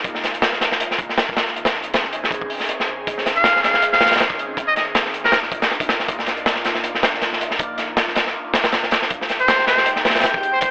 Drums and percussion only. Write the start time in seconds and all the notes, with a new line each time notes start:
0.04 kick, closed hi-hat
0.15 snare
0.24 snare, closed hi-hat
0.34 closed hi-hat
0.42 snare, closed hi-hat
0.52 snare
0.61 snare, closed hi-hat
0.72 snare
0.80 closed hi-hat
0.91 snare
0.99 kick, closed hi-hat
1.09 snare
1.18 snare, closed hi-hat
1.29 kick
1.37 snare, closed hi-hat
1.47 snare
1.56 closed hi-hat
1.65 snare, closed hi-hat
1.75 snare
1.83 closed hi-hat
1.94 snare, closed hi-hat
2.04 snare
2.13 closed hi-hat
2.24 snare
2.31 kick, closed hi-hat
2.42 kick
2.50 open hi-hat
2.60 snare
2.69 closed hi-hat
2.80 snare
3.07 kick, closed hi-hat
3.18 snare
3.26 snare, closed hi-hat
3.36 closed hi-hat
3.44 snare, closed hi-hat
3.56 snare
3.64 snare, closed hi-hat
3.74 snare
3.82 closed hi-hat
3.93 snare
4.01 snare, closed hi-hat
4.05 snare, closed hi-hat
4.11 snare, closed hi-hat
4.16 snare, closed hi-hat
4.19 snare, closed hi-hat
4.30 kick
4.39 closed hi-hat
4.57 kick, closed hi-hat
4.76 snare, closed hi-hat
4.95 snare, closed hi-hat
5.06 snare
5.14 closed hi-hat
5.24 snare
5.32 snare, closed hi-hat
5.43 snare
5.52 kick, closed hi-hat
5.62 snare, closed hi-hat
5.71 snare
5.80 kick, closed hi-hat
5.89 snare, closed hi-hat
5.99 snare
6.08 kick, closed hi-hat
6.19 snare
6.26 snare, closed hi-hat
6.37 closed hi-hat
6.46 snare, closed hi-hat
6.56 snare
6.64 snare, closed hi-hat
6.75 snare
6.84 closed hi-hat
6.95 snare
7.03 snare, closed hi-hat
7.14 snare
7.22 snare, closed hi-hat
7.33 snare
7.41 closed hi-hat
7.51 snare
7.59 kick, closed hi-hat
7.78 snare, closed hi-hat
7.97 snare, closed hi-hat
8.08 snare
8.15 snare, closed hi-hat
8.27 snare
8.54 snare, closed hi-hat
8.64 snare, closed hi-hat
8.72 snare, closed hi-hat
8.83 snare
8.91 snare, closed hi-hat
9.02 snare
9.10 kick, closed hi-hat
9.21 snare
9.29 snare, closed hi-hat
9.39 closed hi-hat
9.48 snare, closed hi-hat
9.58 snare
9.67 snare, closed hi-hat
9.78 snare
9.86 closed hi-hat
9.96 snare
10.05 snare, closed hi-hat
10.10 snare, closed hi-hat
10.15 snare, closed hi-hat
10.20 snare, closed hi-hat
10.24 snare, closed hi-hat
10.34 kick
10.43 closed hi-hat
10.61 kick, closed hi-hat